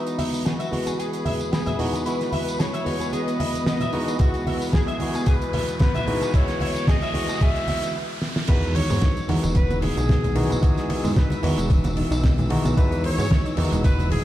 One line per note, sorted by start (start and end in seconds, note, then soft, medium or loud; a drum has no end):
0.00 0.68 E3 medium
0.00 0.69 G#3 medium
0.00 0.69 B3 medium
0.00 7.95 B3 medium
0.00 0.41 D#4 medium
0.00 0.69 F#4 medium
0.00 7.95 B4 medium
0.00 riser medium
0.07 closed hi-hat medium
0.07 tambourine soft
0.18 0.29 E5 medium
0.18 open hi-hat loud
0.18 high conga medium
0.34 tambourine medium
0.45 0.99 F#4 medium
0.45 0.52 G#4 medium
0.45 snare loud
0.45 closed hi-hat medium
0.45 tambourine soft
0.59 0.69 E5 medium
0.59 closed hi-hat soft
0.59 tambourine soft
0.71 1.76 E3 medium
0.71 1.76 G#3 medium
0.71 1.76 B3 medium
0.71 1.77 F#4 medium
0.71 open hi-hat loud
0.71 high conga medium
0.86 0.92 G#4 medium
0.86 closed hi-hat medium
0.86 tambourine medium
0.86 muted conga soft
0.98 1.51 G#4 medium
0.98 1.06 G#4 medium
0.98 closed hi-hat medium
0.98 tambourine medium
1.13 closed hi-hat medium
1.13 tambourine soft
1.25 1.32 E5 medium
1.25 open hi-hat loud
1.25 high conga medium
1.25 low conga medium
1.39 closed hi-hat medium
1.39 tambourine medium
1.52 1.63 B3 medium
1.52 2.02 G#4 medium
1.52 snare loud
1.52 closed hi-hat medium
1.52 tambourine soft
1.66 1.76 E5 medium
1.66 closed hi-hat soft
1.66 tambourine soft
1.66 high conga medium
1.66 low conga medium
1.79 2.03 E3 medium
1.79 2.03 G#3 medium
1.79 2.03 B3 medium
1.79 2.03 D#4 medium
1.79 2.03 F#4 loud
1.79 open hi-hat loud
1.79 low conga medium
1.93 1.99 G#4 medium
1.93 closed hi-hat medium
1.93 tambourine medium
1.93 muted conga medium
2.05 2.83 E3 medium
2.05 2.83 G#3 medium
2.05 2.83 B3 medium
2.05 2.16 E4 medium
2.05 2.84 F#4 medium
2.05 2.59 B4 medium
2.05 closed hi-hat medium
2.05 tambourine medium
2.21 snare soft
2.21 closed hi-hat soft
2.21 tambourine soft
2.32 2.43 E5 medium
2.32 open hi-hat loud
2.32 high conga medium
2.48 closed hi-hat medium
2.48 tambourine medium
2.59 2.66 G#4 loud
2.59 3.13 C#5 loud
2.59 snare loud
2.59 closed hi-hat medium
2.59 tambourine medium
2.74 2.83 E5 medium
2.74 closed hi-hat medium
2.74 tambourine soft
2.85 3.89 E3 medium
2.85 3.90 G#3 medium
2.85 3.90 B3 medium
2.85 3.91 F#4 medium
2.85 open hi-hat loud
2.85 high conga medium
3.00 3.06 G#4 medium
3.00 closed hi-hat medium
3.00 tambourine medium
3.00 muted conga soft
3.13 3.20 G#4 loud
3.13 3.66 D#5 loud
3.13 closed hi-hat medium
3.13 tambourine medium
3.13 muted conga medium
3.28 closed hi-hat medium
3.28 tambourine soft
3.39 3.47 E5 medium
3.39 open hi-hat loud
3.39 high conga medium
3.55 closed hi-hat medium
3.55 tambourine medium
3.55 muted conga soft
3.66 3.77 B3 medium
3.66 4.16 D#5 loud
3.66 snare loud
3.66 closed hi-hat medium
3.66 tambourine medium
3.80 3.90 E5 loud
3.80 closed hi-hat medium
3.80 tambourine soft
3.80 high conga medium
3.80 low conga medium
3.92 4.17 E3 medium
3.92 4.17 G#3 medium
3.92 4.17 B3 medium
3.92 4.17 D#4 medium
3.92 4.17 F#4 loud
3.92 open hi-hat loud
3.92 muted conga medium
4.07 4.14 G#4 medium
4.07 closed hi-hat soft
4.07 tambourine medium
4.19 4.97 E3 medium
4.19 4.97 G#3 medium
4.19 4.97 B3 medium
4.19 4.31 E4 medium
4.19 4.70 F#4 loud
4.19 4.98 F#4 medium
4.19 kick loud
4.19 closed hi-hat medium
4.19 tambourine medium
4.34 closed hi-hat medium
4.34 tambourine soft
4.46 4.57 E5 medium
4.46 open hi-hat loud
4.46 high conga medium
4.62 tambourine medium
4.73 4.80 G#4 loud
4.73 5.27 G#4 loud
4.73 kick loud
4.73 snare loud
4.73 tambourine soft
4.87 4.97 E5 loud
4.87 closed hi-hat medium
4.87 tambourine soft
4.99 6.04 E3 medium
4.99 6.04 G#3 medium
4.99 6.04 B3 medium
4.99 6.05 F#4 medium
4.99 open hi-hat loud
4.99 high conga medium
5.14 5.21 G#4 medium
5.14 closed hi-hat medium
5.14 tambourine medium
5.14 muted conga soft
5.26 5.34 G#4 loud
5.26 5.79 B4 loud
5.26 kick loud
5.26 closed hi-hat medium
5.26 tambourine medium
5.41 closed hi-hat medium
5.41 tambourine soft
5.53 5.61 E5 medium
5.53 open hi-hat loud
5.53 high conga loud
5.53 low conga medium
5.68 closed hi-hat medium
5.68 tambourine medium
5.79 5.91 B3 medium
5.79 6.30 B4 loud
5.79 kick loud
5.79 snare loud
5.79 closed hi-hat medium
5.79 tambourine medium
5.95 6.04 E5 loud
5.95 closed hi-hat medium
5.95 tambourine soft
5.95 high conga medium
5.95 low conga medium
6.07 6.31 E3 medium
6.07 6.31 G#3 medium
6.07 6.31 B3 medium
6.07 6.31 D#4 medium
6.07 6.31 F#4 loud
6.07 open hi-hat loud
6.07 low conga medium
6.21 6.28 G#4 medium
6.21 closed hi-hat medium
6.21 tambourine medium
6.21 muted conga soft
6.34 7.11 E3 medium
6.34 7.12 B3 medium
6.34 6.45 E4 medium
6.34 7.12 F#4 medium
6.34 6.88 C#5 loud
6.34 kick loud
6.34 closed hi-hat medium
6.34 tambourine medium
6.48 snare soft
6.48 closed hi-hat medium
6.48 tambourine soft
6.60 6.72 E5 medium
6.60 open hi-hat loud
6.60 high conga medium
6.75 closed hi-hat medium
6.75 tambourine medium
6.88 6.95 G#4 loud
6.88 7.42 D#5 loud
6.88 kick loud
6.88 snare loud
6.88 closed hi-hat medium
6.88 tambourine medium
7.02 7.12 E5 loud
7.02 closed hi-hat medium
7.02 tambourine soft
7.13 7.94 E3 medium
7.13 7.94 G#3 medium
7.13 7.95 B3 medium
7.13 7.95 F#4 medium
7.13 open hi-hat loud
7.13 high conga medium
7.28 7.35 G#4 medium
7.28 closed hi-hat medium
7.28 tambourine medium
7.28 muted conga soft
7.41 7.49 G#4 loud
7.41 7.95 E5 loud
7.41 kick loud
7.41 closed hi-hat medium
7.41 tambourine medium
7.41 muted conga soft
7.56 closed hi-hat medium
7.56 tambourine soft
7.68 7.75 E5 medium
7.68 open hi-hat loud
7.68 high conga medium
7.82 closed hi-hat medium
7.82 tambourine medium
7.82 muted conga soft
8.22 snare medium
8.36 snare medium
8.47 8.83 E2 loud
8.47 8.54 D#3 loud
8.47 9.25 E3 medium
8.47 14.24 E3 medium
8.47 9.26 G#3 medium
8.47 9.26 B3 medium
8.47 9.26 D#4 medium
8.47 9.27 F#4 medium
8.47 8.73 B4 loud
8.47 14.24 E6 medium
8.47 kick loud
8.47 closed hi-hat medium
8.47 crash loud
8.47 ride medium
8.47 tambourine medium
8.47 muted conga medium
8.63 8.74 G#3 medium
8.63 closed hi-hat soft
8.63 tambourine soft
8.75 8.81 D#3 medium
8.75 9.29 C#5 loud
8.75 open hi-hat loud
8.75 ride medium
8.90 8.98 G#2 medium
8.90 8.97 B3 loud
8.90 tambourine medium
8.90 high conga medium
9.01 9.11 D#3 medium
9.01 kick loud
9.01 snare loud
9.01 closed hi-hat loud
9.01 ride medium
9.01 tambourine medium
9.01 muted conga medium
9.17 9.28 D#4 medium
9.17 closed hi-hat medium
9.17 tambourine soft
9.28 9.39 E2 medium
9.28 9.38 D#3 loud
9.28 10.33 E3 medium
9.28 10.33 G#3 medium
9.28 10.33 B3 medium
9.28 10.33 D#4 medium
9.28 10.34 F#4 medium
9.28 open hi-hat loud
9.28 ride medium
9.28 high conga medium
9.43 9.90 E1 medium
9.43 9.54 G#3 loud
9.43 closed hi-hat medium
9.43 tambourine medium
9.43 muted conga medium
9.55 9.64 D#3 medium
9.55 9.81 B4 loud
9.55 kick loud
9.55 closed hi-hat medium
9.55 ride medium
9.55 tambourine medium
9.70 9.78 B3 medium
9.70 closed hi-hat soft
9.70 tambourine soft
9.70 high conga loud
9.82 9.88 D#3 medium
9.82 10.59 G#4 loud
9.82 open hi-hat loud
9.82 ride medium
9.82 low conga medium
9.97 10.57 B1 medium
9.97 10.08 D#4 medium
9.97 closed hi-hat medium
9.97 tambourine medium
9.97 muted conga medium
10.09 10.18 D#3 loud
10.09 kick loud
10.09 snare loud
10.09 closed hi-hat medium
10.09 ride medium
10.09 high conga medium
10.24 10.28 G#3 medium
10.24 closed hi-hat medium
10.24 tambourine soft
10.24 low conga medium
10.35 10.45 D#3 loud
10.35 10.59 E3 loud
10.35 10.60 G#3 medium
10.35 10.60 B3 medium
10.35 10.60 D#4 medium
10.35 10.60 F#4 loud
10.35 open hi-hat loud
10.35 ride loud
10.35 muted conga medium
10.35 low conga medium
10.50 10.61 B3 loud
10.50 closed hi-hat medium
10.50 tambourine medium
10.50 high conga medium
10.61 10.68 D#3 loud
10.61 11.39 E3 medium
10.61 11.40 G#3 medium
10.61 11.40 B3 medium
10.61 11.40 D#4 medium
10.61 11.40 F#4 medium
10.61 11.13 G#4 loud
10.61 kick loud
10.61 closed hi-hat medium
10.61 ride medium
10.77 10.88 G#3 medium
10.77 snare soft
10.77 closed hi-hat medium
10.77 tambourine soft
10.89 10.95 D#3 medium
10.89 open hi-hat loud
10.89 ride medium
10.89 muted conga medium
11.04 11.13 G#2 medium
11.04 11.11 B3 loud
11.04 tambourine medium
11.04 high conga medium
11.16 11.25 D#3 medium
11.16 11.67 B4 medium
11.16 kick loud
11.16 snare loud
11.16 closed hi-hat medium
11.16 ride medium
11.16 tambourine medium
11.30 11.42 D#4 medium
11.30 closed hi-hat medium
11.30 tambourine soft
11.30 muted conga medium
11.43 11.53 E2 medium
11.43 11.52 D#3 loud
11.43 12.47 E3 medium
11.43 12.47 G#3 medium
11.43 12.47 B3 medium
11.43 12.48 D#4 medium
11.43 12.48 F#4 medium
11.43 open hi-hat loud
11.43 ride medium
11.58 12.04 E1 medium
11.58 11.69 G#3 loud
11.58 closed hi-hat medium
11.58 tambourine medium
11.70 11.79 D#3 medium
11.70 kick loud
11.70 closed hi-hat medium
11.70 ride medium
11.84 11.92 B3 medium
11.84 closed hi-hat medium
11.84 tambourine soft
11.84 muted conga medium
11.84 high conga loud
11.97 12.02 D#3 medium
11.97 open hi-hat loud
11.97 ride medium
12.11 12.58 B1 loud
12.11 12.22 D#4 medium
12.11 closed hi-hat medium
12.11 tambourine medium
12.23 12.32 D#3 loud
12.23 kick loud
12.23 snare loud
12.23 closed hi-hat medium
12.23 ride medium
12.23 tambourine medium
12.23 muted conga medium
12.23 high conga medium
12.38 12.43 G#3 medium
12.38 closed hi-hat medium
12.38 tambourine soft
12.38 low conga medium
12.50 12.59 D#3 loud
12.50 12.74 E3 loud
12.50 12.74 G#3 medium
12.50 12.74 B3 medium
12.50 12.74 D#4 medium
12.50 12.74 F#4 loud
12.50 open hi-hat loud
12.50 ride medium
12.65 12.74 B1 medium
12.65 12.76 B3 loud
12.65 closed hi-hat medium
12.65 tambourine medium
12.65 high conga medium
12.76 13.11 E2 loud
12.76 12.83 D#3 loud
12.76 13.54 E3 medium
12.76 13.55 G#3 medium
12.76 13.55 B3 medium
12.76 13.55 D#4 medium
12.76 13.55 F#4 medium
12.76 13.02 B4 loud
12.76 kick loud
12.76 closed hi-hat medium
12.76 ride medium
12.76 tambourine soft
12.76 muted conga medium
12.92 13.03 G#3 medium
12.92 closed hi-hat medium
12.92 tambourine soft
13.04 13.09 D#3 medium
13.04 13.54 C#5 loud
13.04 open hi-hat loud
13.04 ride medium
13.18 13.27 G#2 medium
13.18 13.26 B3 loud
13.18 tambourine medium
13.18 muted conga soft
13.18 high conga loud
13.30 13.39 D#3 medium
13.30 kick loud
13.30 snare loud
13.30 closed hi-hat medium
13.30 ride medium
13.30 tambourine medium
13.45 13.57 D#4 medium
13.45 closed hi-hat medium
13.45 tambourine soft
13.56 13.68 E2 medium
13.56 13.66 D#3 loud
13.56 14.24 E3 medium
13.56 14.24 G#3 medium
13.56 14.24 B3 medium
13.56 14.24 D#4 medium
13.56 14.24 F#4 medium
13.56 open hi-hat loud
13.56 ride medium
13.56 high conga medium
13.72 14.18 E1 medium
13.72 13.83 G#3 loud
13.72 closed hi-hat medium
13.72 tambourine medium
13.72 muted conga medium
13.84 13.93 D#3 medium
13.84 14.09 B4 loud
13.84 kick loud
13.84 closed hi-hat loud
13.84 ride medium
13.84 tambourine medium
13.99 14.06 B3 medium
13.99 closed hi-hat medium
13.99 tambourine soft
13.99 high conga medium
14.11 14.16 D#3 medium
14.11 14.24 G#4 loud
14.11 open hi-hat loud
14.11 ride medium
14.11 muted conga medium
14.11 low conga medium